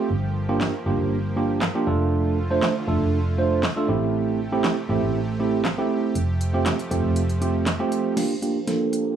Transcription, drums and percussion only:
0.61 snare, clap
1.62 snare, clap
2.63 snare, clap
3.63 snare, clap
4.64 snare, clap
5.65 snare, clap
6.15 closed hi-hat
6.41 closed hi-hat
6.66 snare, clap, closed hi-hat
6.79 closed hi-hat
6.91 closed hi-hat
7.16 closed hi-hat
7.29 closed hi-hat
7.42 closed hi-hat
7.67 snare, clap, closed hi-hat
7.92 closed hi-hat
8.17 snare, closed hi-hat, crash
8.42 closed hi-hat
8.67 snare, closed hi-hat
8.93 closed hi-hat

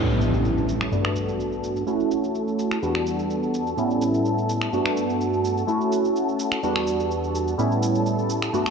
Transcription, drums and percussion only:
0.10 shaker
0.21 shaker
0.34 shaker
0.45 shaker
0.58 shaker
0.69 shaker
0.81 finger snap, shaker
0.92 shaker
1.05 finger snap, shaker
1.16 shaker
1.29 shaker
1.40 shaker
1.52 shaker
1.64 shaker
1.76 shaker
1.87 shaker
2.00 shaker
2.11 shaker
2.24 shaker
2.35 shaker
2.48 shaker
2.59 shaker
2.71 finger snap, shaker
2.83 shaker
2.95 finger snap, shaker
3.07 shaker
3.19 shaker
3.30 shaker
3.43 shaker
3.54 shaker
3.67 shaker
3.78 shaker
3.90 shaker
4.02 shaker
4.14 shaker
4.25 shaker
4.38 shaker
4.49 shaker
4.62 finger snap, shaker
4.73 shaker
4.86 finger snap, shaker
4.97 shaker
5.10 shaker
5.21 shaker
5.34 shaker
5.45 shaker
5.57 shaker
5.68 shaker
5.81 shaker
5.92 shaker
6.05 shaker
6.16 shaker
6.29 shaker
6.39 shaker
6.52 finger snap, shaker
6.63 shaker
6.76 finger snap, shaker
6.87 shaker
7.00 shaker
7.11 shaker
7.24 shaker
7.35 shaker
7.48 shaker
7.59 shaker
7.72 shaker
7.83 shaker
7.95 shaker
8.06 shaker
8.19 shaker
8.30 shaker
8.42 finger snap, shaker
8.54 shaker
8.66 finger snap, shaker

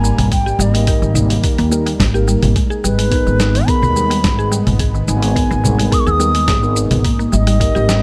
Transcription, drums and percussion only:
0.04 shaker
0.19 open hi-hat, low conga, shaker
0.32 kick, open hi-hat, shaker
0.47 shaker
0.60 shaker
0.75 open hi-hat, shaker
0.87 kick, open hi-hat, shaker
1.03 shaker
1.15 low conga, shaker
1.30 open hi-hat, shaker
1.44 kick, open hi-hat, shaker
1.58 open hi-hat, shaker
1.72 shaker
1.87 open hi-hat, shaker
2.00 kick, snare, open hi-hat, shaker
2.15 shaker
2.28 shaker
2.43 open hi-hat, low conga, shaker
2.56 kick, open hi-hat, shaker
2.71 shaker
2.85 shaker
2.99 open hi-hat, shaker
3.12 kick, open hi-hat, shaker
3.27 shaker
3.40 snare, shaker
3.55 open hi-hat, shaker
3.68 kick, open hi-hat, shaker
3.83 low conga, shaker
3.96 shaker
4.11 open hi-hat, shaker
4.24 kick, snare, open hi-hat, shaker
4.39 shaker
4.52 shaker
4.67 open hi-hat, low conga, shaker
4.79 kick, open hi-hat, shaker
4.95 shaker
5.08 shaker
5.23 open hi-hat, shaker
5.36 kick, open hi-hat, shaker
5.51 shaker
5.65 low conga, shaker
5.79 open hi-hat, shaker
5.92 kick, open hi-hat, shaker
6.07 shaker
6.20 shaker
6.35 open hi-hat, shaker
6.48 kick, snare, open hi-hat, shaker
6.63 shaker
6.76 shaker
6.91 open hi-hat, low conga, shaker
7.05 kick, open hi-hat, shaker
7.20 shaker
7.33 shaker
7.47 open hi-hat, shaker
7.61 kick, open hi-hat, shaker
7.76 shaker
7.89 snare, shaker

